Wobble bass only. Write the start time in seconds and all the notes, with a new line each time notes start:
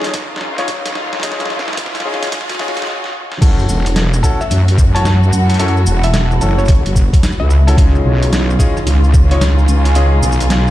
0.14 C#2
0.96 C#2
1.51 B1
3.41 F#1
3.69 E1
4.51 F#2
5.32 F#2
5.87 E1
6.41 F#1
6.86 F#1
7.40 C#2
7.78 C#2
8.05 B1
8.86 C#2
9.68 C#2
10.23 B1